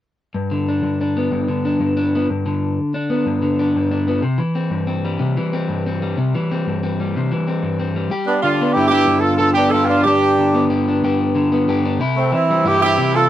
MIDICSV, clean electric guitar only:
0, 0, Header, 1, 3, 480
1, 0, Start_track
1, 0, Tempo, 323974
1, 496, Time_signature, 12, 3, 24, 8
1, 19696, End_track
2, 0, Start_track
2, 0, Title_t, "Clean electric guitar"
2, 0, Program_c, 0, 27
2, 511, Note_on_c, 0, 43, 68
2, 761, Note_on_c, 0, 50, 51
2, 1015, Note_on_c, 0, 62, 48
2, 1222, Note_off_c, 0, 43, 0
2, 1228, Note_on_c, 0, 43, 48
2, 1490, Note_off_c, 0, 62, 0
2, 1496, Note_on_c, 0, 62, 45
2, 1730, Note_on_c, 0, 59, 46
2, 1943, Note_off_c, 0, 43, 0
2, 1949, Note_on_c, 0, 43, 61
2, 2181, Note_off_c, 0, 50, 0
2, 2198, Note_on_c, 0, 50, 51
2, 2429, Note_off_c, 0, 62, 0
2, 2447, Note_on_c, 0, 62, 52
2, 2648, Note_off_c, 0, 43, 0
2, 2666, Note_on_c, 0, 43, 55
2, 2898, Note_off_c, 0, 62, 0
2, 2916, Note_on_c, 0, 62, 54
2, 3153, Note_off_c, 0, 59, 0
2, 3188, Note_on_c, 0, 59, 47
2, 3352, Note_off_c, 0, 43, 0
2, 3357, Note_off_c, 0, 62, 0
2, 3373, Note_off_c, 0, 59, 0
2, 3409, Note_on_c, 0, 43, 62
2, 3627, Note_off_c, 0, 50, 0
2, 3644, Note_on_c, 0, 50, 57
2, 4112, Note_off_c, 0, 43, 0
2, 4360, Note_on_c, 0, 62, 53
2, 4591, Note_on_c, 0, 59, 50
2, 4827, Note_on_c, 0, 43, 61
2, 5053, Note_off_c, 0, 50, 0
2, 5070, Note_on_c, 0, 50, 51
2, 5308, Note_off_c, 0, 62, 0
2, 5324, Note_on_c, 0, 62, 53
2, 5541, Note_off_c, 0, 43, 0
2, 5568, Note_on_c, 0, 43, 61
2, 5780, Note_off_c, 0, 62, 0
2, 5798, Note_on_c, 0, 62, 54
2, 6023, Note_off_c, 0, 59, 0
2, 6041, Note_on_c, 0, 59, 49
2, 6238, Note_off_c, 0, 62, 0
2, 6239, Note_off_c, 0, 59, 0
2, 6243, Note_off_c, 0, 43, 0
2, 6257, Note_on_c, 0, 48, 67
2, 6263, Note_off_c, 0, 50, 0
2, 6490, Note_on_c, 0, 52, 53
2, 6497, Note_off_c, 0, 48, 0
2, 6744, Note_on_c, 0, 60, 43
2, 6972, Note_on_c, 0, 43, 57
2, 7211, Note_off_c, 0, 60, 0
2, 7217, Note_on_c, 0, 60, 60
2, 7476, Note_on_c, 0, 55, 50
2, 7693, Note_on_c, 0, 48, 62
2, 7694, Note_off_c, 0, 43, 0
2, 7933, Note_off_c, 0, 52, 0
2, 7934, Note_off_c, 0, 48, 0
2, 7956, Note_on_c, 0, 52, 60
2, 8176, Note_off_c, 0, 60, 0
2, 8197, Note_on_c, 0, 60, 57
2, 8426, Note_on_c, 0, 43, 52
2, 8666, Note_off_c, 0, 60, 0
2, 8688, Note_on_c, 0, 60, 55
2, 8915, Note_off_c, 0, 55, 0
2, 8921, Note_on_c, 0, 55, 51
2, 9112, Note_off_c, 0, 43, 0
2, 9117, Note_off_c, 0, 52, 0
2, 9123, Note_off_c, 0, 60, 0
2, 9147, Note_on_c, 0, 48, 70
2, 9381, Note_off_c, 0, 48, 0
2, 9404, Note_on_c, 0, 52, 58
2, 9653, Note_on_c, 0, 60, 50
2, 9878, Note_on_c, 0, 43, 51
2, 10103, Note_off_c, 0, 60, 0
2, 10121, Note_on_c, 0, 60, 56
2, 10349, Note_off_c, 0, 55, 0
2, 10371, Note_on_c, 0, 55, 50
2, 10587, Note_off_c, 0, 43, 0
2, 10611, Note_on_c, 0, 48, 57
2, 10820, Note_off_c, 0, 52, 0
2, 10833, Note_off_c, 0, 48, 0
2, 10838, Note_on_c, 0, 52, 58
2, 11058, Note_off_c, 0, 60, 0
2, 11076, Note_on_c, 0, 60, 51
2, 11301, Note_on_c, 0, 43, 54
2, 11528, Note_off_c, 0, 60, 0
2, 11545, Note_on_c, 0, 60, 51
2, 11772, Note_off_c, 0, 55, 0
2, 11790, Note_on_c, 0, 55, 49
2, 11989, Note_off_c, 0, 43, 0
2, 11992, Note_off_c, 0, 60, 0
2, 11998, Note_off_c, 0, 52, 0
2, 12021, Note_on_c, 0, 67, 60
2, 12496, Note_on_c, 0, 50, 56
2, 12757, Note_off_c, 0, 55, 0
2, 12763, Note_on_c, 0, 59, 50
2, 12983, Note_on_c, 0, 43, 58
2, 12997, Note_on_c, 0, 62, 59
2, 13199, Note_off_c, 0, 62, 0
2, 13205, Note_on_c, 0, 62, 50
2, 13429, Note_off_c, 0, 43, 0
2, 13435, Note_on_c, 0, 43, 60
2, 13448, Note_off_c, 0, 62, 0
2, 13454, Note_on_c, 0, 62, 47
2, 13912, Note_off_c, 0, 50, 0
2, 13929, Note_on_c, 0, 50, 59
2, 14174, Note_off_c, 0, 59, 0
2, 14192, Note_on_c, 0, 59, 60
2, 14405, Note_off_c, 0, 43, 0
2, 14422, Note_on_c, 0, 43, 62
2, 14428, Note_off_c, 0, 67, 0
2, 14434, Note_on_c, 0, 67, 62
2, 14654, Note_off_c, 0, 62, 0
2, 14673, Note_on_c, 0, 62, 51
2, 14870, Note_off_c, 0, 43, 0
2, 14874, Note_off_c, 0, 59, 0
2, 14875, Note_off_c, 0, 62, 0
2, 14903, Note_on_c, 0, 43, 65
2, 14927, Note_on_c, 0, 62, 58
2, 15372, Note_off_c, 0, 50, 0
2, 15387, Note_on_c, 0, 50, 49
2, 15623, Note_on_c, 0, 59, 60
2, 15826, Note_off_c, 0, 43, 0
2, 15843, Note_on_c, 0, 43, 58
2, 15849, Note_off_c, 0, 67, 0
2, 15855, Note_on_c, 0, 67, 47
2, 16110, Note_off_c, 0, 62, 0
2, 16126, Note_on_c, 0, 62, 50
2, 16329, Note_off_c, 0, 43, 0
2, 16350, Note_on_c, 0, 43, 62
2, 16354, Note_off_c, 0, 67, 0
2, 16360, Note_on_c, 0, 67, 56
2, 16801, Note_off_c, 0, 50, 0
2, 16819, Note_on_c, 0, 50, 66
2, 17052, Note_off_c, 0, 59, 0
2, 17070, Note_on_c, 0, 59, 56
2, 17287, Note_off_c, 0, 43, 0
2, 17305, Note_on_c, 0, 43, 66
2, 17311, Note_off_c, 0, 67, 0
2, 17317, Note_on_c, 0, 67, 63
2, 17543, Note_off_c, 0, 62, 0
2, 17561, Note_on_c, 0, 62, 55
2, 17750, Note_off_c, 0, 43, 0
2, 17753, Note_off_c, 0, 59, 0
2, 17758, Note_off_c, 0, 62, 0
2, 17771, Note_on_c, 0, 48, 64
2, 17776, Note_off_c, 0, 50, 0
2, 17784, Note_off_c, 0, 67, 0
2, 17790, Note_on_c, 0, 64, 66
2, 18251, Note_on_c, 0, 52, 54
2, 18252, Note_off_c, 0, 48, 0
2, 18524, Note_on_c, 0, 55, 53
2, 18738, Note_on_c, 0, 43, 67
2, 18743, Note_off_c, 0, 64, 0
2, 18749, Note_on_c, 0, 64, 52
2, 19012, Note_on_c, 0, 60, 60
2, 19216, Note_off_c, 0, 43, 0
2, 19228, Note_on_c, 0, 48, 59
2, 19230, Note_off_c, 0, 64, 0
2, 19236, Note_on_c, 0, 64, 57
2, 19692, Note_off_c, 0, 52, 0
2, 19696, Note_off_c, 0, 48, 0
2, 19696, Note_off_c, 0, 55, 0
2, 19696, Note_off_c, 0, 60, 0
2, 19696, Note_off_c, 0, 64, 0
2, 19696, End_track
3, 0, Start_track
3, 0, Title_t, "Muted clean electric guitar strokes"
3, 12009, Note_on_c, 9, 29, 67
3, 12157, Note_off_c, 9, 29, 0
3, 19696, End_track
0, 0, End_of_file